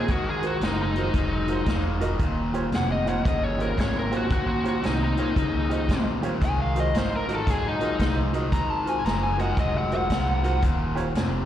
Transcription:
Already playing: G#4
0.08 G#1 G#2 D#3 F#4, kick, closed hi-hat
0.30 G#4
0.42 F4 F#4 A#4 C5, closed hi-hat
0.47 F#4
0.61 F#1 G#2 F3 D#4, snare, closed hi-hat
0.82 D#4
0.96 G#2 D#3 F4 F#4 A#4 C5, closed hi-hat
1.14 F1 G#2 F#3, kick, closed hi-hat
1.48 F4 F#4 A#4 C5, closed hi-hat
1.66 E1 G#2 F3, kick, snare, closed hi-hat
2.00 G#2 D#3 F4 F#4 A#4 D#5, closed hi-hat
2.19 D#1 D#2 A#2, kick, closed hi-hat
2.53 F4 G4 C5 C#5, closed hi-hat
2.72 F1 D#2 C3 F#5, snare, closed hi-hat
2.92 D#5
3.06 D#2 A#2 F4 G4 C5 C#5 F#5, closed hi-hat
3.24 G1 D#2 C#3 D#5, kick, closed hi-hat
3.44 C#5
3.57 F4 G4 A#4 C5 C#5, closed hi-hat
3.76 G#1 D#2 C3, kick, closed hi-hat
3.80 C#5, snare
3.99 A#4
4.10 D#2 A#2 F4 G4 C5 C#5, closed hi-hat
4.16 F#4
4.29 A#1 D#2 A#2, kick, closed hi-hat
4.33 F#4
4.49 F#4
4.64 F4 G4 C5 C#5, muted upright bass stroke, closed hi-hat
4.69 F#4
4.82 C2 D#2 C3 D#4, snare, closed hi-hat
5.04 D#4
5.17 D#2 A#2 F4 G4 C5 C#5, muted upright bass stroke, closed hi-hat
5.34 C#2 D#2 C#3, kick, closed hi-hat
5.69 F4 G4 C5 D#5, closed hi-hat
5.87 A#1 D#2 C3, kick, snare, closed hi-hat
6.21 D#2 A#2 F4 G4 C5 C#5, closed hi-hat
6.40 C2 G#2 D#3, kick, closed hi-hat
6.45 G#5
6.61 F5
6.75 F4 F#4 A#4 C5, closed hi-hat
6.80 D#5
6.94 G#1 G#2 F3 C5, snare, closed hi-hat
7.16 A#4
7.27 G#2 D#3 F4 F#4 A#4 D#5, closed hi-hat
7.35 A4
7.47 A#1 G#2 F#3 G#4, kick, snare, closed hi-hat
7.68 D#4
7.80 F4 F#4 A#4 D#5, closed hi-hat
7.99 C2 G#2 F3, kick, snare, closed hi-hat
8.33 G#2 D#3 F4 F#4 A#4 D#5, closed hi-hat
8.52 G#1 G#2 D#3 A#5, kick, closed hi-hat
8.70 A5
8.85 F4 F#4 A#4 C5 G#5, closed hi-hat
9.04 F#1 G#2 F3 A#5, snare, closed hi-hat
9.23 G#5
9.37 G#2 D#3 F4 F#4 A#4 D#5 F#5, closed hi-hat
9.57 F1 G#2 F#3 D#5, kick, closed hi-hat
9.78 F#5
9.91 F4 F#4 A#4 C5 F#5, closed hi-hat
10.10 C2 G#2 F3, kick, snare, closed hi-hat
10.43 G#2 D#3 F4 F#4 A#4 C5, closed hi-hat
10.61 D#1 D#2 A#2, kick, closed hi-hat
10.95 F4 G4 C5 C#5, closed hi-hat
11.15 F1 D#2 C3, snare, closed hi-hat

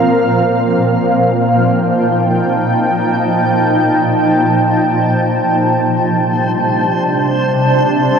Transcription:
Already playing: A#2 F3 C4 A#4 F5
0.93 G5
1.14 D#4
1.25 A5
5.67 C3 C5 C6
5.83 G3
6.01 D4
7.12 E5

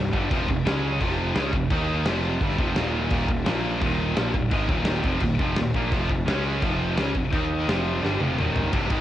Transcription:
Already playing: C1 C2 G2
0.13 G1 G2 D3 G3, kick
0.31 F1 F2 C3 F3, kick, crash
0.48 F1 F2 C3, kick
0.65 C#2 C#3 G#3 C#4, snare, crash
1.00 F1 F2 C3 F3, kick, crash
1.10 snare
1.35 C#2 C#3 G#3 C#4, snare, crash
1.53 F1 F2 C3, kick
1.70 D#2 D#3 A#3 D#4, kick, crash
2.05 F1 F2 C3 F3, snare, crash
2.41 G1 G2 D3 G3, kick, crash
2.50 snare
2.58 F1 F2 C3 F3, kick
2.76 D#1 D#2 A#2 D#3, snare, crash
3.10 D#1 D#2 A#2 D#3, kick, crash
3.28 D#1 D#2 A#2, kick
3.46 A#1 A#2 F3 A#3, snare, crash
3.81 D#1 D#2 A#2 D#3, kick, crash
3.90 snare
4.16 A#1 A#2 F3 A#3, snare, crash
4.34 D#1 D#2 A#2, kick
4.51 G#1 G#2 D#3 G#3, kick, crash
4.68 D#1 D#2 A#2 D#3, kick
4.85 snare, crash
5.04 F1 F2 C3 F3, kick
5.20 D#1 D#2 A#2, kick, crash
5.39 F1 F2 C3 F3, kick
5.56 D#1 D#2 A#2, snare, crash
5.74 A#1 A#2 F3 A#3, kick
5.91 F1 F2 C3 F3, kick, crash
6.09 F1 F2 C3, kick
6.27 C#2 C#3 G#3 C#4, snare, crash
6.62 F1 F2 C3 F3, kick, crash
6.97 C#2 C#3 G#3 C#4, snare, crash
7.15 F1 F2 C3, kick
7.32 D#2 D#3 A#3 D#4, kick, crash
7.69 F1 F2 C3 F3, snare, crash
8.03 G1 G2 D3 G3, snare
8.20 F1 F2 C3 F3, high tom
8.38 D#1 D#2 A#2 D#3, mid tom
8.56 floor tom
8.73 C1 C2 G2 C3, kick, ride
8.90 G#1 G#2 D#3 G#3, kick, ride

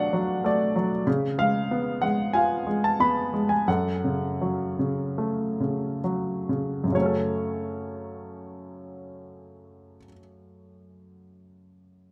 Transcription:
Already playing: B2 F#3 A3 D4 D5 F5 F#5
0.13 F#3
0.44 A3 D5
0.76 F#3
1.07 C#3
1.38 G#3 F5
1.71 B3
2.02 G#3 F#5
2.33 F4 F5 G#5
2.67 G#3
2.84 A5
3.00 B3 B5
3.34 G#3
3.49 G#5
3.68 F#2 A4 F#5
4.04 C#3
4.41 F#3
4.79 C#3
5.18 A3
5.60 C#3
6.04 F#3
6.49 C#3
6.84 F#2
6.88 C#3
6.92 F#3 C#5
6.97 A3
7.01 C#4
7.06 A4

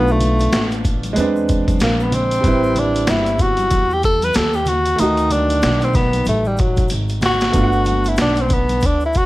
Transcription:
Already playing: B1 A3 B3 D4 F4
0.08 shaker
0.12 A3
0.20 closed hi-hat, high conga, low conga, shaker
0.39 closed hi-hat, shaker
0.52 A1, snare, closed hi-hat, shaker
0.71 closed hi-hat, shaker
0.84 kick, closed hi-hat, low conga, shaker
1.03 closed hi-hat, high conga, shaker
1.13 E2 G#3 B4, closed hi-hat, high conga, shaker
1.18 C4 D4
1.36 shaker
1.48 kick, closed hi-hat, shaker
1.68 kick, closed hi-hat, high conga, shaker
1.80 A#1 A#3, snare, closed hi-hat, shaker
2.00 B3, shaker
2.12 C4, closed hi-hat, low conga, shaker
2.31 closed hi-hat, shaker
2.41 A1 G3 B4, kick, closed hi-hat, shaker
2.45 C4 E4
2.63 shaker
2.75 D4, closed hi-hat, high conga, low conga, shaker
2.94 closed hi-hat, shaker
3.07 G1 E4, snare, closed hi-hat, shaker
3.26 closed hi-hat, shaker
3.38 F#4, kick, closed hi-hat, low conga, shaker
3.57 closed hi-hat, high conga, shaker
3.71 E2, kick, closed hi-hat, high conga, shaker
3.90 G4, shaker
4.02 A4, kick, closed hi-hat, shaker
4.22 B4, closed hi-hat, high conga, shaker
4.33 D#2 A4, snare, closed hi-hat, shaker
4.53 G4, shaker
4.66 F#4, closed hi-hat, low conga, shaker
4.86 closed hi-hat, shaker
4.96 D2 D#3 A3 D#4, closed hi-hat, shaker
5.02 F#4
5.17 closed hi-hat, shaker
5.30 D4, closed hi-hat, high conga, low conga, shaker
5.49 closed hi-hat, shaker
5.62 B1, snare, closed hi-hat, shaker
5.81 C4, closed hi-hat, shaker
5.94 B3, kick, snare, closed hi-hat, low conga, shaker
6.13 closed hi-hat, high conga, shaker
6.25 A1 A3, closed hi-hat, high conga, shaker
6.45 G3, shaker
6.57 F#3, kick, closed hi-hat, shaker
6.76 kick, closed hi-hat, high conga, shaker
6.88 G#1, closed hi-hat, shaker
7.08 closed hi-hat, shaker
7.21 snare, closed hi-hat, low conga, shaker
7.25 F#4
7.40 snare, closed hi-hat, shaker
7.50 A3 B3, kick, closed hi-hat, shaker
7.55 G1 D4 F4
7.63 F#5
7.72 shaker
7.85 closed hi-hat, high conga, low conga, shaker
8.04 closed hi-hat, shaker
8.09 E4
8.16 B1, snare, closed hi-hat, shaker
8.22 D4
8.36 closed hi-hat, shaker
8.41 C4
8.48 kick, closed hi-hat, low conga, shaker
8.54 B3
8.69 closed hi-hat, high conga, shaker
8.80 D2, kick, closed hi-hat, high conga, shaker
8.86 D4
9.00 shaker
9.06 E4
9.13 kick, closed hi-hat, shaker
9.17 F#4

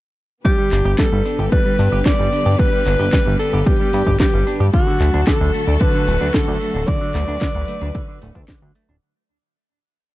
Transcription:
0.45 D3 G3 B3 G4 B4, kick, closed hi-hat, cabasa
0.58 G3, closed hi-hat
0.72 G1 D4, clap, open hi-hat, cabasa
0.85 G1 G4, closed hi-hat, cabasa
0.99 G3 A4, kick, snare, clap, closed hi-hat, cabasa
1.12 G1 G3
1.25 D4, open hi-hat, cabasa
1.39 G1 G4, closed hi-hat, cabasa
1.52 G3 B4, kick, closed hi-hat, cabasa
1.66 G3
1.79 G2 D4, open hi-hat, cabasa
1.92 G1 G4, closed hi-hat, cabasa
2.06 G3 D5, kick, snare, clap, closed hi-hat, cabasa
2.19 G1 G3
2.32 D4, open hi-hat, cabasa
2.46 G2 G4, closed hi-hat, cabasa
2.59 G3 B4, kick, closed hi-hat, cabasa
2.73 G3, closed hi-hat
2.86 G1 D4, clap, open hi-hat, cabasa
2.99 G1 G4, closed hi-hat, cabasa
3.13 G3, kick, snare, clap, closed hi-hat, cabasa
3.26 G1 G3
3.39 D4 A4, open hi-hat, cabasa
3.53 G1 G4, closed hi-hat, cabasa
3.66 G3 G4, kick, closed hi-hat, cabasa
3.80 G3
3.93 G2 D4, open hi-hat, cabasa
4.06 G1 G4, kick, closed hi-hat, cabasa
4.20 G3 G4, kick, snare, clap, closed hi-hat, cabasa
4.33 G1 G3
4.47 D4, open hi-hat, cabasa
4.60 G2 G4, closed hi-hat, cabasa
4.73 D3 F#3 A3 F#4 A4, kick, closed hi-hat, cabasa
4.87 D3, closed hi-hat
5.00 D2 A3, clap, open hi-hat, cabasa
5.14 D2 D4, closed hi-hat, cabasa
5.27 D3 A4, kick, snare, clap, closed hi-hat, cabasa
5.41 D2 D3
5.54 A3, open hi-hat, cabasa
5.67 D2 D4, closed hi-hat, cabasa
5.80 D3 B4, kick, closed hi-hat, cabasa
5.94 D3
6.07 D1 A3, open hi-hat, cabasa
6.21 D2 D4, closed hi-hat, cabasa
6.34 D3 A4, kick, snare, clap, closed hi-hat, cabasa
6.48 D2 D3
6.61 A3, open hi-hat, cabasa
6.74 D1 D4, closed hi-hat, cabasa
6.88 D3 B4 D5, kick, closed hi-hat, cabasa
7.01 D3, closed hi-hat
7.15 D2 A3, clap, open hi-hat, cabasa
7.28 D2 D4, closed hi-hat, cabasa
7.41 D3, kick, snare, clap, closed hi-hat, cabasa
7.55 D2 D3, closed hi-hat
7.68 A3, open hi-hat, cabasa
7.82 D2 D4, closed hi-hat, cabasa
7.95 D3, kick, closed hi-hat, cabasa
8.08 D3
8.22 D1 A3, open hi-hat, cabasa
8.35 D2 D4, kick, closed hi-hat, cabasa
8.48 D3, kick, snare, clap, closed hi-hat, cabasa
8.62 D2 D3
8.75 A3, open hi-hat, cabasa
8.89 D1 D4, closed hi-hat, cabasa

